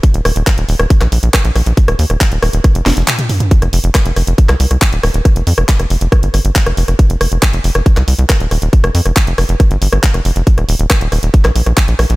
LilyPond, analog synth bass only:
\new Staff \with { instrumentName = "Analog synth bass" } { \clef bass \time 4/4 \key ees \mixolydian \tempo 4 = 138 r16 ees,,16 ees,,16 ees,,16 r16 ees,,16 ees,,16 ees,,16 r16 bes,,16 bes,,16 bes,,16 r16 bes,,16 bes,,16 bes,,16 | r16 ees,,16 ees,16 ees,,16 r16 ees,,16 ees,,16 ees,,16 r16 f,,16 f,,16 f,,16 r4 | r16 f,,16 f,,16 f,,16 r16 f,,16 f,,16 f,,16 r16 c,16 c,16 c,16 r16 ees,,16 ees,,16 ees,,16 | r16 f,,16 f,16 f,,16 r16 f,,16 f,,16 f,,16 r16 g,,16 g,,16 g,,16 r16 f,,16 f,,16 f,,16 |
r16 f,,16 f,,16 f,,16 r16 f,,16 f,,16 f,,16 r16 c,16 c,16 c,16 r16 ees,,16 ees,,16 ees,,16 | r16 f,,16 f,16 f,,16 r16 f,,16 f,,16 f,,16 r16 g,,16 g,,16 g,,16 r16 f,,16 f,,16 f,,16 | r16 ees,,16 ees,,16 ees,,16 r16 ees,,16 ees,,16 ees,,16 r16 bes,,16 bes,,16 bes,,16 r16 bes,,16 bes,,16 bes,,16 | }